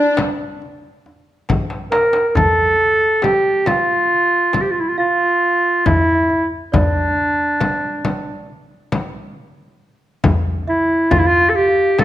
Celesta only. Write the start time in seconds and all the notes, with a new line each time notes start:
Already playing: D5
1.92 A#5
2.37 A5
3.23 G5
3.67 F5
4.98 F5
5.86 E5
6.01 E5
6.09 E5
6.15 E5
6.23 E5
6.30 E5
6.72 D5
10.67 E5
11.11 F5
11.23 F5
11.31 F5
11.40 F5
11.46 F5
11.55 F5
11.61 F5
11.69 F5
11.83 F5
11.99 F5